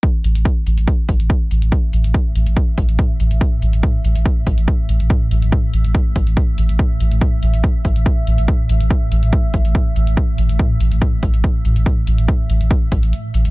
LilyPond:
<<
  \new Staff \with { instrumentName = "Synth drone" } { \clef bass \time 4/4 \key c \major \tempo 4 = 142 a,1~ | a,1~ | a,1~ | a,1~ |
a,1~ | a,1~ | a,1~ | a,1 | }
  \new Staff \with { instrumentName = "Sub bass" } { \clef bass \time 4/4 \key c \major r8 a,,16 a,,16 r8 a,,16 a,,16 r8 a,,16 a,,16 r8 a,,16 a,,16 | r8 a,,16 a,,16 r8 a,,16 a,,16 r8 a,,16 a,,16 r8 a,,16 a,,16 | r8 a,,16 a,,16 r8 a,,16 a,,16 r8 a,,16 a,,16 r8 a,,16 a,,16 | r8 a,,16 a,,16 r8 a,,16 a,,16 r8 a,,16 a,,16 r8 a,,16 a,,16 |
r8 a,,16 a,,16 r8 a,,16 a,,16 r8 a,,16 a,,16 r8 a,,16 a,,16 | r8 a,,16 a,,16 r8 a,,16 a,,16 r8 a,,16 a,,16 r8 a,,16 a,,16 | r8 a,,16 a,,16 r8 a,,16 a,,16 r8 a,,16 a,,16 r8 a,,16 a,,16 | r8 a,,16 a,,16 r8 a,,16 a,,16 r8 a,,16 a,,16 r8 a,,16 a,,16 | }
  \new DrumStaff \with { instrumentName = "Drums" } \drummode { \time 4/4 <hh bd>8 hh16 hh16 <hh bd>8 hh16 hh16 <hh bd>8 <hh bd>16 hh16 <hh bd>8 hh16 hh16 | <hh bd>8 hh16 hh16 <hh bd>8 hh16 hh16 <hh bd>8 <hh bd>16 hh16 <hh bd>8 hh16 hh16 | <hh bd>8 hh16 hh16 <hh bd>8 hh16 hh16 <hh bd>8 <hh bd>16 hh16 <hh bd>8 hh16 hh16 | <hh bd>8 hh16 hh16 <hh bd>8 hh16 hh16 <hh bd>8 <hh bd>16 hh16 <hh bd>8 hh16 hh16 |
<hh bd>8 hh16 hh16 <hh bd>8 hh16 hh16 <hh bd>8 <hh bd>16 hh16 <hh bd>8 hh16 hh16 | <hh bd>8 hh16 hh16 <hh bd>8 hh16 hh16 <hh bd>8 <hh bd>16 hh16 <hh bd>8 hh16 hh16 | <hh bd>8 hh16 hh16 <hh bd>8 hh16 hh16 <hh bd>8 <hh bd>16 hh16 <hh bd>8 hh16 hh16 | <hh bd>8 hh16 hh16 <hh bd>8 hh16 hh16 <hh bd>8 <hh bd>16 hh16 hh8 hh16 hh16 | }
>>